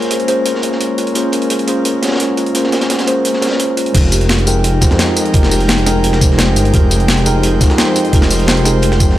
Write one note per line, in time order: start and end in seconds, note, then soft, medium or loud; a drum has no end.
0.00 3.90 G#3 medium
0.00 0.27 A#3 medium
0.00 0.27 C#4 medium
0.00 3.90 C#4 medium
0.00 0.28 F4 medium
0.00 0.28 G#4 medium
0.00 3.90 A#4 medium
0.00 0.29 C5 loud
0.00 1.12 C5 medium
0.00 0.64 C#5 medium
0.00 closed hi-hat soft
0.11 0.20 G#4 medium
0.11 closed hi-hat medium
0.20 closed hi-hat soft
0.27 0.60 A#3 medium
0.27 0.61 C#4 medium
0.27 0.61 F4 medium
0.27 0.61 G#4 medium
0.27 0.44 C5 loud
0.27 0.61 C5 loud
0.27 closed hi-hat medium
0.46 0.55 A#4 medium
0.46 closed hi-hat medium
0.55 snare soft
0.62 0.70 A#3 medium
0.62 0.70 C#4 medium
0.62 0.70 F4 medium
0.62 0.70 G#4 medium
0.62 0.71 C#5 medium
0.62 closed hi-hat medium
0.72 snare soft
0.80 closed hi-hat medium
0.98 1.14 F4 medium
0.98 closed hi-hat medium
1.07 closed hi-hat soft
1.14 1.65 A#3 medium
1.14 1.65 C#4 medium
1.14 1.25 F4 medium
1.14 1.66 F4 medium
1.14 1.66 G#4 medium
1.14 1.67 C5 loud
1.14 closed hi-hat medium
1.32 1.49 A#4 loud
1.32 closed hi-hat medium
1.42 closed hi-hat soft
1.50 1.60 G#4 medium
1.50 closed hi-hat medium
1.59 closed hi-hat soft
1.67 2.00 A#3 medium
1.67 2.00 C#4 medium
1.67 2.01 F4 medium
1.67 2.01 G#4 medium
1.67 1.84 C5 loud
1.67 2.01 C5 loud
1.67 closed hi-hat medium
1.85 1.95 A#4 medium
1.85 closed hi-hat medium
2.02 2.09 A#3 medium
2.02 2.10 C#4 medium
2.02 2.10 F4 medium
2.02 2.10 G#4 medium
2.02 2.10 C#5 medium
2.02 snare medium
2.02 closed hi-hat medium
2.07 snare medium
2.07 closed hi-hat medium
2.11 snare medium
2.11 closed hi-hat medium
2.16 snare medium
2.16 closed hi-hat medium
2.20 closed hi-hat medium
2.37 2.53 F4 medium
2.37 closed hi-hat medium
2.46 closed hi-hat soft
2.53 3.04 A#3 medium
2.53 3.05 C#4 medium
2.53 3.05 F4 medium
2.53 2.65 F4 medium
2.53 3.06 G#4 medium
2.53 3.06 C5 loud
2.53 closed hi-hat medium
2.53 closed hi-hat loud
2.64 snare soft
2.72 2.88 A#4 medium
2.72 snare loud
2.72 closed hi-hat medium
2.81 snare loud
2.81 closed hi-hat medium
2.81 closed hi-hat soft
2.90 3.00 G#4 medium
2.90 snare loud
2.90 closed hi-hat medium
2.99 snare loud
2.99 closed hi-hat medium
2.99 closed hi-hat soft
3.06 3.40 A#3 medium
3.06 3.40 C#4 medium
3.06 3.40 F4 medium
3.06 3.40 G#4 medium
3.06 3.23 C5 loud
3.06 3.41 C5 loud
3.06 closed hi-hat medium
3.25 3.34 A#4 medium
3.25 closed hi-hat medium
3.33 snare soft
3.41 3.49 A#3 medium
3.41 3.49 C#4 medium
3.41 3.49 F4 medium
3.41 3.50 G#4 medium
3.41 3.50 C#5 medium
3.41 snare medium
3.41 closed hi-hat medium
3.47 snare medium
3.47 closed hi-hat medium
3.51 snare medium
3.51 closed hi-hat medium
3.59 closed hi-hat medium
3.77 3.93 F4 medium
3.77 closed hi-hat medium
3.86 closed hi-hat soft
3.93 4.89 F1 loud
3.93 4.44 G#3 medium
3.93 9.18 G#3 medium
3.93 4.44 D#4 medium
3.93 9.18 D#4 medium
3.93 4.04 D#4 medium
3.93 4.45 F4 medium
3.93 4.45 G4 medium
3.93 6.71 A#4 medium
3.93 4.46 A#4 loud
3.93 9.18 G5 medium
3.93 kick loud
3.93 closed hi-hat loud
3.93 closed hi-hat medium
3.93 crash loud
4.12 4.28 G4 loud
4.12 closed hi-hat medium
4.12 tambourine medium
4.21 closed hi-hat soft
4.29 4.39 F4 medium
4.29 snare loud
4.29 closed hi-hat medium
4.29 closed hi-hat loud
4.38 closed hi-hat soft
4.46 4.79 G#3 loud
4.46 4.79 D#4 medium
4.46 4.80 F4 medium
4.46 4.63 G#4 loud
4.46 4.80 A#4 loud
4.46 4.80 G5 medium
4.46 closed hi-hat medium
4.46 tambourine medium
4.64 4.74 G4 medium
4.64 closed hi-hat loud
4.64 closed hi-hat medium
4.81 4.88 G#3 medium
4.81 4.89 D#4 medium
4.81 4.89 F4 medium
4.81 4.89 G4 medium
4.81 4.89 C5 medium
4.81 kick loud
4.81 snare medium
4.81 closed hi-hat medium
4.81 tambourine medium
4.90 5.33 F2 loud
4.90 snare medium
4.90 snare soft
4.98 snare loud
4.98 closed hi-hat medium
5.16 5.32 D#4 medium
5.16 closed hi-hat medium
5.16 tambourine medium
5.25 closed hi-hat soft
5.32 6.21 F1 loud
5.32 5.83 G#3 medium
5.32 5.84 D#4 medium
5.32 5.44 D#4 medium
5.32 5.84 F4 medium
5.32 5.85 G4 medium
5.32 5.85 A#4 loud
5.32 kick loud
5.32 closed hi-hat medium
5.32 closed hi-hat loud
5.43 snare medium
5.43 snare soft
5.51 5.67 G4 loud
5.51 closed hi-hat medium
5.51 open hi-hat medium
5.51 tambourine medium
5.60 closed hi-hat soft
5.68 5.79 F4 medium
5.68 snare loud
5.68 closed hi-hat medium
5.78 closed hi-hat soft
5.85 6.19 G#3 loud
5.85 6.19 D#4 medium
5.85 6.19 F4 medium
5.85 6.02 G#4 loud
5.85 6.20 A#4 loud
5.85 6.19 G5 medium
5.85 snare medium
5.85 closed hi-hat medium
5.85 tambourine medium
6.04 6.13 G4 medium
6.04 closed hi-hat medium
6.04 closed hi-hat loud
6.12 snare soft
6.20 6.55 F1 medium
6.20 6.28 G#3 medium
6.20 6.28 D#4 medium
6.20 6.29 F4 medium
6.20 6.29 G4 medium
6.20 6.29 C5 medium
6.20 kick loud
6.20 closed hi-hat medium
6.20 tambourine medium
6.31 snare soft
6.38 snare loud
6.38 closed hi-hat medium
6.56 6.72 G1 medium
6.56 6.72 D#4 medium
6.56 closed hi-hat medium
6.56 tambourine medium
6.65 closed hi-hat soft
6.72 7.68 F1 loud
6.72 7.23 G#3 medium
6.72 7.23 D#4 medium
6.72 6.83 D#4 medium
6.72 7.24 F4 medium
6.72 7.24 G4 medium
6.72 7.25 A#4 loud
6.72 9.18 C5 medium
6.72 kick loud
6.72 closed hi-hat medium
6.91 7.07 G4 loud
6.91 closed hi-hat medium
6.91 tambourine medium
7.00 closed hi-hat soft
7.08 7.18 F4 medium
7.08 snare loud
7.08 closed hi-hat loud
7.08 closed hi-hat medium
7.18 closed hi-hat soft
7.25 7.58 G#3 loud
7.25 7.59 D#4 medium
7.25 7.59 F4 medium
7.25 7.42 G#4 loud
7.25 7.59 A#4 loud
7.25 7.59 G5 medium
7.25 closed hi-hat medium
7.25 tambourine medium
7.43 7.53 G4 medium
7.43 closed hi-hat medium
7.60 7.67 G#3 medium
7.60 7.68 D#4 medium
7.60 7.68 F4 medium
7.60 7.68 G4 medium
7.60 7.68 C5 medium
7.60 kick loud
7.60 snare medium
7.60 closed hi-hat medium
7.60 tambourine medium
7.70 8.12 F2 loud
7.70 snare medium
7.70 snare soft
7.78 snare loud
7.78 closed hi-hat medium
7.95 8.11 D#4 medium
7.95 closed hi-hat medium
7.95 tambourine medium
8.05 closed hi-hat soft
8.11 9.00 F1 loud
8.11 8.62 G#3 medium
8.11 8.63 D#4 medium
8.11 8.23 D#4 medium
8.11 8.63 F4 medium
8.11 8.64 G4 medium
8.11 8.64 A#4 loud
8.11 kick loud
8.11 closed hi-hat medium
8.11 closed hi-hat loud
8.22 snare soft
8.22 snare medium
8.30 8.46 G4 loud
8.30 closed hi-hat medium
8.30 open hi-hat medium
8.30 tambourine medium
8.39 closed hi-hat soft
8.48 8.58 F4 medium
8.48 snare loud
8.48 closed hi-hat medium
8.57 closed hi-hat soft
8.64 8.98 G#3 loud
8.64 8.98 D#4 medium
8.64 8.98 F4 medium
8.64 8.81 G#4 loud
8.64 8.99 A#4 loud
8.64 8.98 G5 medium
8.64 snare medium
8.64 closed hi-hat medium
8.64 tambourine medium
8.82 8.93 G4 medium
8.82 closed hi-hat medium
8.92 snare soft
8.99 9.18 F1 medium
8.99 9.07 G#3 medium
8.99 9.07 D#4 medium
8.99 9.16 D#4 medium
8.99 9.07 F4 medium
8.99 9.08 G4 medium
8.99 9.08 C5 loud
8.99 kick loud
8.99 closed hi-hat medium
8.99 tambourine medium
9.09 snare soft